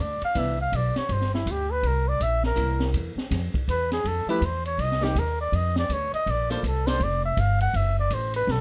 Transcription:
0.00 upright bass D2, flugelhorn D5
0.22 flugelhorn F5, muted upright bass stroke, ride
0.35 upright bass C2, hollow-body jazz guitar E3 B3 D4, flugelhorn E5, kick, ride
0.61 flugelhorn F5
0.72 upright bass B1, flugelhorn D5, kick, hi-hat pedal, ride
0.96 flugelhorn C#5, muted upright bass stroke, snare, ride
1.09 upright bass G1, flugelhorn C5, kick, ride
1.21 snare
1.34 flugelhorn E4, snare
1.46 upright bass D2, kick, hi-hat pedal, ride
1.51 flugelhorn G4
1.72 flugelhorn B4
1.83 upright bass C2, flugelhorn A#4, kick, ride
2.08 flugelhorn D5
2.20 upright bass A#1, flugelhorn E5, kick, hi-hat pedal, ride
2.43 flugelhorn A#4, snare
2.56 upright bass C2, hollow-body jazz guitar A#3 E4, kick, ride
2.80 snare
2.94 upright bass E2, kick, hi-hat pedal, ride
3.16 muted upright bass stroke, snare
3.31 upright bass F2, kick, snare, ride
3.54 muted upright bass stroke, kick, ride
3.68 upright bass E2, flugelhorn B4, kick, hi-hat pedal, ride
3.92 flugelhorn G#4, snare, ride
4.04 upright bass F2, flugelhorn A4, kick, ride
4.26 hollow-body jazz guitar F3 A3 E4 G4, flugelhorn B4, muted upright bass stroke
4.41 upright bass E2, kick, hi-hat pedal, ride
4.45 flugelhorn C5
4.66 flugelhorn C#5, ride
4.78 upright bass C2, flugelhorn D#5, kick, ride
4.92 snare
5.01 hollow-body jazz guitar A#3 D#4 G4, flugelhorn G4, snare
5.15 upright bass D#2, flugelhorn A#4, kick, hi-hat pedal, ride
5.41 flugelhorn D5
5.52 upright bass F2, flugelhorn D#5, kick, ride
5.76 flugelhorn D5, snare
5.89 upright bass D2, flugelhorn C#5, kick, hi-hat pedal, ride
6.13 flugelhorn D#5, muted upright bass stroke, ride
6.26 upright bass A#1, kick, ride
6.31 flugelhorn D5
6.50 hollow-body jazz guitar A#3 D4 A4 C5, flugelhorn F4
6.63 upright bass C2, flugelhorn A4, kick, hi-hat pedal, ride
6.87 hollow-body jazz guitar A#3 D4 A4 C5, flugelhorn C5, snare
7.00 upright bass F1, flugelhorn D5, kick, ride
7.25 flugelhorn E5
7.37 upright bass G1, flugelhorn F5, kick, hi-hat pedal, ride
7.61 flugelhorn F#5, ride
7.73 upright bass F#1, flugelhorn E5, kick, ride
7.99 flugelhorn D5
8.10 upright bass A1, flugelhorn C5, kick, hi-hat pedal, ride
8.34 flugelhorn B4, ride
8.47 upright bass B1, flugelhorn A4, kick, snare

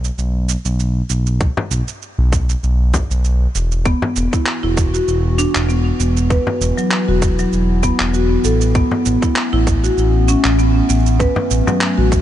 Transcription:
Already playing: analog synth bass B1
0.04 shaker
0.18 analog synth bass B1, shaker
0.49 shaker
0.65 analog synth bass B1, shaker
0.79 shaker
1.10 analog synth bass B1, shaker
1.26 shaker
1.41 kick, shaker
1.57 frame drum
1.71 analog synth bass B1, shaker
1.88 shaker
2.02 shaker
2.19 analog synth bass B1
2.33 kick, shaker
2.49 shaker
2.63 analog synth bass B1, shaker
2.94 kick, frame drum, shaker
3.10 analog synth bass B1, shaker
3.25 shaker
3.55 analog synth bass E1, shaker
3.72 shaker
3.85 ambient pad E3 B3 F#4, marimba B3, kick, shaker
4.02 frame drum
4.16 analog synth bass E1, shaker
4.33 marimba E4, kick, shaker
4.46 clap, shaker
4.63 analog synth bass E1, marimba E4
4.77 kick, shaker
4.94 marimba F#4, shaker
5.08 analog synth bass E1, shaker
5.38 marimba D4, shaker
5.55 analog synth bass E1, clap, shaker
5.69 marimba B3, shaker
5.99 analog synth bass E1, marimba B3, shaker
6.17 shaker
6.30 ambient pad E4, marimba B4, kick, shaker
6.47 frame drum
6.61 analog synth bass E1, shaker
6.78 marimba F#3, shaker
6.91 clap, shaker
7.08 analog synth bass E1, marimba F#4
7.22 kick, shaker
7.39 marimba F#3, shaker
7.53 analog synth bass E1, shaker
7.83 marimba B3, kick, shaker
8.00 analog synth bass E1, clap, shaker
8.14 marimba F#4, shaker
8.44 analog synth bass A1, marimba A4, shaker
8.61 shaker
8.75 ambient pad A3 C#4, marimba B3, kick, shaker
8.91 frame drum
9.06 analog synth bass A1, shaker
9.22 marimba E4, kick, shaker
9.36 clap, shaker
9.53 analog synth bass A1, marimba E4
9.67 kick, shaker
9.84 marimba F#4, shaker
9.98 analog synth bass A1, shaker
10.28 marimba C#4, shaker
10.44 analog synth bass A1, clap, shaker
10.59 marimba B3, shaker
10.89 analog synth bass A1, marimba B3, shaker
11.06 shaker
11.20 marimba B4, kick, shaker
11.36 frame drum
11.51 analog synth bass A1, shaker
11.67 marimba F#3, frame drum, shaker
11.81 clap, shaker
11.98 analog synth bass A1, marimba F#4
12.12 kick, shaker

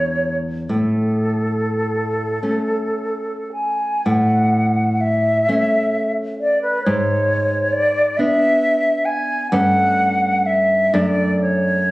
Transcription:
Already playing: nylon-string guitar E2 G#3 D4, flute C#5
0.69 nylon-string guitar A2, flute A4
2.43 nylon-string guitar A3 C#4
3.53 flute G#5
4.06 nylon-string guitar A2, flute F#5
5.01 flute E5
5.48 nylon-string guitar A3 C#4
6.40 flute D5
6.62 flute B4
6.84 nylon-string guitar G#2, flute C#5
7.72 flute D5
8.17 nylon-string guitar B3 D4, flute E5
9.05 flute G#5
9.51 nylon-string guitar G2 A3 C#4, flute F#5
10.46 flute E5
10.94 nylon-string guitar F#2 A3 D4, flute D5
11.02 flute E5
11.07 flute D5
11.41 flute C#5

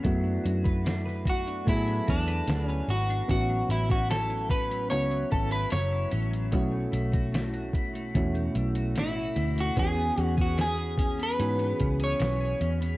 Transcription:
Already playing: clean electric guitar B3 C#4 G#4
0.03 picked electric bass F#2, clean electric guitar F#3, synth keys A3 B3 E4 F#4, kick, closed hi-hat
0.24 clean electric guitar D4
0.44 picked electric bass F#2, clean electric guitar F#4, closed hi-hat
0.64 clean electric guitar B4, kick, closed hi-hat
0.85 clean electric guitar D4, snare, closed hi-hat
1.06 clean electric guitar B4, snare
1.26 clean electric guitar F#4, kick, closed hi-hat
1.30 clean electric guitar F#4
1.47 clean electric guitar D4, closed hi-hat
1.65 picked electric bass A2, clean electric guitar F#3 E4, synth keys A3 B3 E4 G#4, kick, closed hi-hat
1.75 synth keys A4
1.87 clean electric guitar D4, closed hi-hat
2.07 picked electric bass E2, clean electric guitar D4 F#4, kick, closed hi-hat
2.27 clean electric guitar B4, closed hi-hat
2.47 picked electric bass D2, clean electric guitar D4, snare, closed hi-hat
2.66 clean electric guitar C#4 B4, closed hi-hat
2.88 picked electric bass G#1, clean electric guitar F#4, open hi-hat
3.09 clean electric guitar D4, closed hi-hat
3.28 picked electric bass A1, clean electric guitar A2 F#4, synth keys B3 C#4 E4 F#4, kick, closed hi-hat
3.49 clean electric guitar F#3
3.69 picked electric bass A1, clean electric guitar C#4 E4, closed hi-hat
3.89 clean electric guitar E4 F#4, kick, closed hi-hat
4.09 clean electric guitar F#3 A4, snare, closed hi-hat
4.29 clean electric guitar E4, closed hi-hat
4.49 clean electric guitar C#4 B4, kick, closed hi-hat
4.70 clean electric guitar F#3, closed hi-hat
4.90 picked electric bass C#2, synth keys B3 C#4 E4 F#4, clean electric guitar C#5, closed hi-hat
5.10 clean electric guitar F#3, closed hi-hat
5.30 picked electric bass G#1, clean electric guitar C#4 A4, kick, closed hi-hat
5.50 clean electric guitar E4 B4, closed hi-hat
5.70 picked electric bass F#1, clean electric guitar F#3 C#5, snare, closed hi-hat
5.91 clean electric guitar E4
6.11 picked electric bass A1, clean electric guitar C#4, closed hi-hat
6.31 clean electric guitar F#3, closed hi-hat
6.52 picked electric bass B1, clean electric guitar B2, synth keys A3 C#4 E4 F#4, kick, closed hi-hat
6.72 clean electric guitar A3
6.92 picked electric bass B1, clean electric guitar E4, closed hi-hat
7.12 clean electric guitar F#4, kick, closed hi-hat
7.32 clean electric guitar A3, snare, closed hi-hat
7.54 clean electric guitar F#4, closed hi-hat
7.74 clean electric guitar E4, kick, closed hi-hat
7.94 clean electric guitar A3, closed hi-hat
8.14 picked electric bass E2, clean electric guitar B2, synth keys A3 C#4 E4 F#4, kick, closed hi-hat
8.34 clean electric guitar A3, closed hi-hat
8.55 picked electric bass B1, clean electric guitar E4, closed hi-hat
8.75 clean electric guitar F#4, closed hi-hat
8.95 picked electric bass A1, clean electric guitar A3 E4, snare, closed hi-hat
9.16 clean electric guitar F#4
9.36 picked electric bass D2, clean electric guitar E4, closed hi-hat
9.56 clean electric guitar A3, closed hi-hat
9.60 clean electric guitar F#4
9.76 picked electric bass E2, clean electric guitar E3 G#4, synth keys B3 C#4 F#4 G#4, kick, closed hi-hat
9.97 clean electric guitar B3
10.18 picked electric bass E2, clean electric guitar C#4, closed hi-hat
10.22 clean electric guitar F#4
10.37 clean electric guitar G#4, kick, closed hi-hat
10.41 clean electric guitar F#4
10.58 clean electric guitar B3 G#4, snare, closed hi-hat
10.78 clean electric guitar G#4, closed hi-hat
10.98 clean electric guitar C#4, kick, closed hi-hat
11.18 clean electric guitar B3, closed hi-hat
11.23 clean electric guitar B4
11.38 picked electric bass G#2, clean electric guitar E3, synth keys B3 C#4 F#4 G#4, closed hi-hat
11.59 clean electric guitar B3, closed hi-hat
11.80 picked electric bass C#2, clean electric guitar C#4, kick, closed hi-hat
12.00 clean electric guitar G#4 C#5, closed hi-hat
12.19 picked electric bass B1, clean electric guitar B3, snare, closed hi-hat
12.41 clean electric guitar G#4
12.61 picked electric bass E2, clean electric guitar C#4, closed hi-hat
12.81 clean electric guitar B3, closed hi-hat

